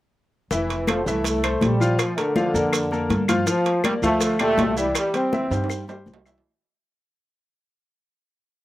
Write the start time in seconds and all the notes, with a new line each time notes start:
0.51 F1 E3 E4 E5, high bongo, high conga, maracas
0.69 high bongo, high conga, high timbale, maracas
0.87 F3 A3 A4 C5, high bongo, high conga, high timbale, claves, maracas
1.06 C2 E3 A3 E4 E5, high conga, maracas
1.24 A3, high bongo, high conga, high timbale, maracas
1.43 A3 A4 C5, high bongo, high conga, high timbale, claves, maracas
1.61 A#1 G3, high bongo, low bongo, high conga, high timbale, maracas
1.80 F3 F4 F5, high bongo, high conga, maracas
1.99 F3, high bongo, high conga, high timbale, claves, maracas
2.17 D3 A3 A4 A#4, high bongo, high conga, high timbale, maracas
2.36 F3 F4 F5, high bongo, high conga, maracas
2.54 F2 A#3 A4 A#4, high conga, maracas
2.73 high bongo, high conga, high timbale, claves, maracas
2.91 A#3 A4 A#4, high bongo, high conga, maracas
3.09 G2, high bongo, low bongo, high conga, high timbale, maracas
3.28 F3 F4 F5, high bongo, high conga, high timbale, claves, maracas
3.46 F3 F4 F5, high bongo, high conga, maracas
3.65 high bongo, high conga, high timbale, maracas
3.84 G3 A#3 A#4 D5, high bongo, high conga, high timbale, claves, maracas
4.02 D2 F3 A3 F4 F5, high conga, maracas
4.21 high bongo, high conga, high timbale, maracas
4.39 A#2 A3 G4 D5, high bongo, high conga, high timbale, claves, maracas
4.57 C2, high bongo, low bongo, high conga, high timbale, low timbale, maracas
4.76 E3 G3 E4 E5, high bongo, high conga, maracas
4.95 G3, high bongo, high conga, high timbale, claves, maracas
5.14 G3 C4 G4 C5, high bongo, high conga, high timbale, maracas
5.33 E3 E4 E5, high bongo, high conga, maracas
5.50 G2 G3 G4 C5, high timbale, maracas
5.64 high timbale
5.70 high bongo, high conga, claves, maracas
5.88 G3 G4 C5, high bongo, high conga, low timbale, maracas
6.06 C2, high bongo, low bongo, high conga, maracas
6.14 low timbale
6.25 E3 E4 E5, high bongo, low timbale, claves, maracas
6.38 low timbale